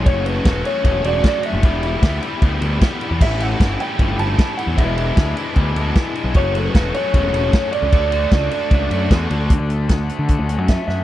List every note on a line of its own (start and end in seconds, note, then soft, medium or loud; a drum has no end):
0.05 0.39 F#1 loud
0.05 0.45 F#2 medium
0.05 0.45 C#3 loud
0.05 0.28 F#3 loud
0.05 0.27 A3 medium
0.05 0.26 C#4 loud
0.05 1.61 F#4 medium
0.05 0.25 F#4 medium
0.05 1.61 C#5 medium
0.05 0.26 C#5 medium
0.05 1.61 C#6 medium
0.05 kick loud
0.05 ride loud
0.26 0.43 F#3 medium
0.26 0.45 A3 medium
0.26 0.46 C#4 medium
0.26 0.47 F#4 medium
0.26 0.65 B4 medium
0.26 ride medium
0.44 0.62 E1 medium
0.44 0.66 F#3 medium
0.44 0.66 A3 medium
0.44 0.64 C#4 medium
0.44 0.63 F#4 medium
0.44 kick loud
0.44 snare loud
0.44 ride loud
0.65 0.83 F#3 medium
0.65 0.84 A3 medium
0.65 0.84 C#4 medium
0.65 0.85 F#4 medium
0.65 1.02 C#5 loud
0.65 ride medium
0.83 1.01 E1 loud
0.83 1.43 F#2 medium
0.83 1.43 C#3 loud
0.83 1.22 F#3 loud
0.83 1.23 A3 loud
0.83 1.24 C#4 loud
0.83 1.25 F#4 loud
0.83 kick loud
0.83 ride loud
1.04 1.20 E1 loud
1.04 1.23 F#3 medium
1.04 1.23 A3 medium
1.04 1.24 C#4 medium
1.04 1.25 F#4 medium
1.04 1.25 D5 medium
1.04 ride medium
1.23 1.62 F#2 medium
1.23 1.62 C#3 loud
1.23 1.44 F#3 medium
1.23 1.43 A3 medium
1.23 1.42 C#4 medium
1.23 1.41 F#4 medium
1.23 1.45 D5 loud
1.23 kick loud
1.23 snare loud
1.23 ride loud
1.42 1.63 F#3 medium
1.42 1.62 A3 medium
1.42 1.62 C#4 medium
1.42 1.61 F#4 medium
1.42 2.19 E5 medium
1.42 ride medium
1.53 1.63 F#1 medium
1.61 1.96 E1 loud
1.61 2.02 E2 medium
1.61 2.02 B2 medium
1.61 1.85 E3 loud
1.61 1.84 G3 loud
1.61 1.82 B3 loud
1.61 1.82 E4 loud
1.61 4.74 G4 medium
1.61 3.18 E5 medium
1.61 3.18 B5 medium
1.61 4.74 D6 medium
1.61 kick loud
1.61 ride loud
1.82 2.02 E3 medium
1.82 2.03 G3 medium
1.82 2.03 B3 medium
1.82 2.05 E4 medium
1.82 ride medium
2.02 2.18 D2 medium
2.02 2.24 E3 medium
2.02 2.23 G3 medium
2.02 2.21 B3 medium
2.02 2.21 E4 loud
2.02 kick loud
2.02 snare loud
2.02 ride loud
2.22 2.42 E3 medium
2.22 2.42 G3 medium
2.22 2.42 B3 medium
2.22 2.44 E4 medium
2.22 ride medium
2.41 2.58 D2 loud
2.41 3.00 E2 loud
2.41 3.01 B2 loud
2.41 2.81 E3 loud
2.41 2.81 G3 loud
2.41 2.82 B3 loud
2.41 2.84 E4 loud
2.41 kick loud
2.41 ride medium
2.60 2.78 D2 medium
2.60 2.80 E3 medium
2.60 2.80 G3 medium
2.60 2.80 B3 medium
2.60 2.81 E4 medium
2.60 ride medium
2.80 3.18 E2 medium
2.80 3.19 B2 loud
2.80 3.04 E3 medium
2.80 3.02 G3 medium
2.80 3.01 B3 medium
2.80 kick loud
2.80 snare loud
2.80 ride loud
2.84 3.01 E4 medium
3.01 3.22 E3 medium
3.01 3.20 G3 medium
3.01 3.20 B3 medium
3.01 3.24 E4 medium
3.01 ride medium
3.11 3.22 E2 medium
3.19 3.53 A1 loud
3.19 3.60 A2 loud
3.19 3.59 E3 loud
3.19 3.42 G3 loud
3.19 3.42 A3 medium
3.19 6.31 E5 medium
3.19 3.42 E5 medium
3.19 6.31 A5 medium
3.19 kick loud
3.19 crash medium
3.23 3.41 C#4 loud
3.23 3.39 E4 loud
3.40 3.60 G3 medium
3.40 3.59 A3 medium
3.40 3.61 C#4 medium
3.40 3.62 E4 medium
3.40 3.80 F#5 medium
3.40 ride medium
3.59 3.76 G1 medium
3.59 4.01 E3 medium
3.59 3.82 G3 medium
3.59 3.81 A3 medium
3.59 3.81 C#4 medium
3.59 3.80 E4 medium
3.59 kick loud
3.59 snare loud
3.59 ride loud
3.80 4.01 G3 medium
3.80 4.19 A3 medium
3.80 4.02 C#4 medium
3.80 4.02 E4 medium
3.80 4.17 G5 loud
3.80 ride medium
3.99 4.15 G1 loud
3.99 4.59 A2 medium
3.99 4.36 E3 medium
3.99 4.37 G3 loud
3.99 kick medium
3.99 ride medium
4.03 4.39 C#4 loud
4.03 4.39 E4 loud
4.18 4.35 G1 medium
4.18 4.38 A3 medium
4.18 4.38 C#4 medium
4.18 4.39 E4 medium
4.18 4.55 A5 loud
4.18 ride medium
4.38 4.76 A2 loud
4.38 4.76 E3 medium
4.38 4.60 G3 medium
4.38 4.77 A3 loud
4.38 4.59 C#4 medium
4.38 4.57 E4 medium
4.38 kick loud
4.38 snare loud
4.38 ride loud
4.57 4.77 C#4 medium
4.57 4.77 E4 medium
4.57 4.78 F#5 medium
4.57 ride medium
4.61 4.78 G3 medium
4.67 4.79 E2 medium
4.77 5.10 E1 loud
4.77 5.17 E2 medium
4.77 5.17 B2 loud
4.77 5.00 E3 medium
4.77 4.99 G#3 medium
4.77 4.96 B3 loud
4.77 4.98 D4 medium
4.77 4.96 E4 loud
4.77 6.33 B4 medium
4.77 5.32 E5 medium
4.77 6.33 D6 medium
4.77 kick loud
4.77 ride loud
4.97 5.15 E3 medium
4.97 5.17 G#3 medium
4.97 5.16 B3 medium
4.97 5.18 D4 medium
4.97 5.19 E4 medium
4.97 ride medium
5.16 5.33 D2 medium
5.16 5.39 E3 medium
5.16 5.38 G#3 medium
5.16 5.35 B3 medium
5.16 5.37 D4 medium
5.16 5.35 E4 medium
5.16 kick loud
5.16 snare loud
5.16 ride loud
5.36 5.57 E3 medium
5.36 5.58 G#3 medium
5.36 5.75 B3 medium
5.36 5.58 D4 medium
5.36 5.58 E4 medium
5.36 ride medium
5.56 5.73 D2 loud
5.56 6.15 E2 loud
5.56 6.16 B2 medium
5.56 5.94 E3 medium
5.56 5.96 G#3 medium
5.56 5.96 D4 loud
5.56 5.98 E4 loud
5.56 kick medium
5.56 ride medium
5.75 5.92 D2 medium
5.75 5.94 E3 medium
5.75 5.95 G#3 medium
5.75 5.96 B3 medium
5.75 5.96 E4 medium
5.75 ride medium
5.95 6.33 E2 medium
5.95 6.34 B2 loud
5.95 6.16 E3 medium
5.95 6.15 G#3 medium
5.95 6.34 B3 loud
5.95 6.14 D4 medium
5.95 kick loud
5.95 snare loud
5.95 ride medium
5.99 6.13 E4 medium
6.15 6.35 E3 medium
6.15 6.34 G#3 medium
6.15 6.34 D4 medium
6.15 6.33 E4 medium
6.15 ride medium
6.24 6.36 B1 medium
6.34 6.68 F#1 loud
6.34 6.74 F#2 loud
6.34 6.74 C#3 loud
6.34 6.55 F#3 loud
6.34 6.55 A3 loud
6.34 6.54 C#4 loud
6.34 6.52 F#4 loud
6.34 7.91 A4 medium
6.34 7.91 C#5 medium
6.34 6.56 C#5 loud
6.34 9.47 F#5 medium
6.34 7.91 C#6 medium
6.34 kick loud
6.34 ride loud
6.53 6.73 F#3 medium
6.53 6.74 A3 medium
6.53 6.75 C#4 medium
6.53 6.76 F#4 medium
6.53 6.65 A4 medium
6.53 ride medium
6.65 6.95 B4 loud
6.73 6.91 E1 medium
6.73 6.96 F#3 medium
6.73 6.95 A3 medium
6.73 6.94 C#4 medium
6.73 6.93 F#4 loud
6.73 kick loud
6.73 snare loud
6.73 ride medium
6.93 7.14 F#3 medium
6.93 7.15 A3 medium
6.93 7.15 C#4 medium
6.93 7.16 F#4 medium
6.93 7.69 C#5 loud
6.93 ride medium
7.13 7.30 E1 loud
7.13 7.72 F#2 medium
7.13 7.73 C#3 loud
7.13 7.52 F#3 loud
7.13 7.53 A3 loud
7.13 7.54 C#4 loud
7.13 7.55 F#4 loud
7.13 kick medium
7.13 ride medium
7.32 7.49 E1 medium
7.32 7.52 F#3 medium
7.32 7.53 A3 medium
7.32 7.53 C#4 medium
7.32 7.53 F#4 medium
7.32 ride medium
7.52 7.90 F#2 medium
7.52 7.91 C#3 loud
7.52 7.74 F#3 medium
7.52 7.73 A3 medium
7.52 7.72 C#4 medium
7.52 7.71 F#4 medium
7.52 kick loud
7.52 snare loud
7.52 ride loud
7.72 7.91 F#3 medium
7.72 7.93 A3 medium
7.72 7.93 C#4 medium
7.72 7.95 F#4 medium
7.72 9.06 D5 loud
7.72 ride medium
7.82 7.93 C#2 medium
7.91 8.25 D2 loud
7.91 8.30 D3 medium
7.91 8.13 A3 loud
7.91 8.11 D4 loud
7.91 8.10 F#4 loud
7.91 9.48 A4 medium
7.91 9.48 D5 medium
7.91 9.48 C#6 medium
7.91 kick loud
7.91 ride loud
8.11 8.31 A3 medium
8.11 8.32 D4 medium
8.11 8.33 F#4 medium
8.11 ride medium
8.31 8.48 C#2 medium
8.31 8.68 D3 medium
8.31 8.53 A3 medium
8.31 8.52 D4 medium
8.31 8.50 F#4 medium
8.31 kick loud
8.31 snare loud
8.31 ride loud
8.51 8.70 A3 medium
8.51 8.70 D4 medium
8.51 8.71 F#4 medium
8.51 ride medium
8.69 8.87 C#2 loud
8.69 9.09 D3 medium
8.69 9.10 A3 loud
8.69 9.11 D4 loud
8.69 9.12 F#4 loud
8.69 kick loud
8.69 ride medium
8.90 9.08 F#2 medium
8.90 9.10 A3 medium
8.90 9.10 D4 medium
8.90 9.12 F#4 medium
8.90 ride medium
9.10 9.28 E2 medium
9.10 9.48 D3 medium
9.10 9.32 A3 medium
9.10 9.30 D4 medium
9.10 9.29 F#4 medium
9.10 kick loud
9.10 snare loud
9.10 ride loud
9.30 9.48 D2 medium
9.30 9.50 A3 medium
9.30 9.49 D4 medium
9.30 9.49 F#4 medium
9.30 ride medium
9.50 9.58 D2 loud
9.50 10.49 D3 medium
9.50 kick loud
9.50 closed hi-hat medium
9.60 10.09 D2 medium
9.69 10.07 A3 medium
9.69 closed hi-hat medium
9.88 10.27 F#4 medium
9.88 kick loud
9.88 snare loud
9.88 closed hi-hat medium
10.09 10.68 A3 medium
10.09 closed hi-hat medium
10.19 10.35 D3 medium
10.28 10.87 F#4 medium
10.28 kick loud
10.28 closed hi-hat medium
10.39 10.58 D2 medium
10.48 11.04 C#4 medium
10.48 closed hi-hat medium
10.58 10.75 F#2 medium
10.68 11.04 A3 medium
10.68 10.86 E5 medium
10.68 kick loud
10.68 snare medium
10.68 closed hi-hat medium
10.88 11.04 F#2 medium
10.88 11.04 F#4 medium
10.88 11.04 E5 medium
10.88 snare soft